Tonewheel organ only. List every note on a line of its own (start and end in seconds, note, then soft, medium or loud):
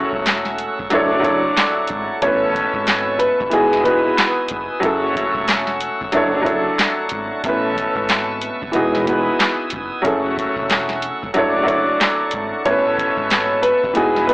0.00 2.19 A3 medium
0.00 2.19 F#5 medium
0.00 3.48 C#6 medium
0.00 0.88 E6 medium
0.92 2.21 A5 medium
2.22 4.80 B4 medium
2.22 3.51 A5 medium
2.22 4.80 E6 medium
3.54 4.82 G#5 medium
3.54 4.82 D#6 medium
4.85 7.42 A3 medium
4.85 6.12 F#5 medium
4.85 7.42 C#6 medium
4.85 6.13 E6 medium
6.13 7.42 F#5 medium
6.13 7.42 A5 medium
7.45 8.73 B4 medium
7.45 8.73 A5 medium
7.45 8.73 C#6 medium
7.45 11.32 E6 medium
8.74 10.03 B4 medium
8.74 10.03 G#5 medium
8.74 10.03 D#6 medium
10.04 12.63 A3 medium
10.04 12.63 F#5 medium
10.04 13.92 C#6 medium
11.36 12.64 A5 medium
12.66 14.34 B4 medium
12.66 13.95 A5 medium
12.66 14.34 E6 medium
13.97 14.34 G#5 medium
13.97 14.34 D#6 medium